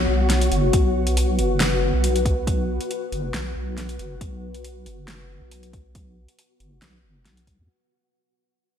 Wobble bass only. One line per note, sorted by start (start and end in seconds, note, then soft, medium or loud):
0.08 0.50 B1 medium
0.52 0.72 F#1 loud
0.73 1.40 B1 medium
1.39 1.92 F#1 loud
1.94 2.79 B1 medium
3.12 3.32 F#1 loud
3.34 3.54 B1 medium
3.56 3.98 B1 medium
3.99 4.19 F#1 medium
4.21 4.88 B1 medium
4.86 5.40 F#1 loud
5.42 6.27 B1 medium
6.60 6.80 F#1 loud
6.82 7.05 B1 medium
7.04 7.27 F#1 loud
7.25 7.57 B1 medium
7.59 7.68 E2 loud